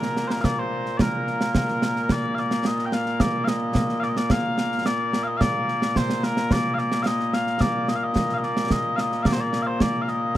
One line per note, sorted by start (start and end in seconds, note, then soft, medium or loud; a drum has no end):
0.00 10.37 A#2 medium
0.00 10.37 A#3 medium
0.00 0.27 A#4 medium
0.00 snare medium
0.17 snare medium
0.27 0.32 C5 medium
0.27 snare medium
0.32 0.41 A#4 medium
0.41 0.59 D5 medium
0.41 0.44 F5 medium
0.41 concert bass drum medium
0.41 snare medium
0.59 0.97 C5 medium
0.86 snare soft
0.97 2.12 A#4 medium
0.97 1.01 D5 medium
0.97 concert bass drum medium
0.97 snare medium
1.27 snare soft
1.41 snare medium
1.55 concert bass drum medium
1.55 snare loud
1.68 snare soft
1.82 snare medium
1.96 snare soft
2.09 2.35 D5 loud
2.09 concert bass drum medium
2.09 snare loud
2.35 2.39 F5 medium
2.35 snare soft
2.39 2.66 D5 medium
2.51 snare medium
2.65 2.85 D#5 medium
2.65 snare medium
2.79 snare soft
2.85 2.93 G5 medium
2.92 3.20 F5 loud
2.92 snare medium
3.06 snare soft
3.20 3.44 D5 loud
3.20 concert bass drum medium
3.20 snare loud
3.44 4.00 D#5 medium
3.44 3.48 F5 medium
3.44 snare medium
3.75 concert bass drum medium
3.75 snare loud
3.89 snare soft
4.00 4.09 D5 loud
4.00 4.03 F5 loud
4.00 snare soft
4.09 4.17 D#5 medium
4.17 4.31 D5 medium
4.17 snare medium
4.30 4.86 F5 loud
4.30 concert bass drum medium
4.30 snare loud
4.58 snare medium
4.72 snare soft
4.86 5.23 D5 loud
4.86 snare loud
5.13 snare medium
5.23 5.37 D#5 loud
5.23 5.27 F5 loud
5.37 5.97 D5 loud
5.37 5.41 F5 loud
5.37 concert bass drum medium
5.37 snare medium
5.68 snare soft
5.82 snare medium
5.96 6.24 C5 medium
5.96 concert bass drum medium
5.96 snare medium
6.10 snare medium
6.23 6.52 A#4 loud
6.23 snare medium
6.37 snare medium
6.51 6.74 D5 loud
6.51 concert bass drum medium
6.51 snare medium
6.74 6.78 F5 medium
6.78 7.02 D5 medium
6.78 snare soft
6.92 snare medium
7.03 7.34 D#5 loud
7.03 7.06 F5 loud
7.03 snare medium
7.20 snare soft
7.33 7.61 F5 medium
7.33 snare medium
7.47 snare soft
7.61 7.89 D5 loud
7.61 concert bass drum medium
7.61 snare medium
7.88 7.96 D#5 medium
7.88 snare medium
7.96 8.03 F5 medium
8.03 8.34 D#5 medium
8.16 concert bass drum medium
8.16 snare medium
8.29 snare soft
8.34 8.44 D#5 medium
8.34 8.37 F5 medium
8.43 8.72 D5 loud
8.43 snare soft
8.57 snare medium
8.70 8.96 D#5 loud
8.70 concert bass drum medium
8.70 snare loud
8.96 9.23 D#5 medium
8.96 9.00 F5 medium
8.96 snare medium
9.12 snare soft
9.23 9.33 D5 medium
9.23 9.26 F5 medium
9.23 concert bass drum medium
9.23 snare medium
9.33 9.40 C5 medium
9.40 9.62 D5 medium
9.53 snare medium
9.62 9.67 F5 medium
9.67 9.81 C5 medium
9.80 10.02 D5 loud
9.80 concert bass drum soft
9.80 snare medium
10.02 10.08 F5 medium
10.08 10.36 D#5 medium
10.08 snare soft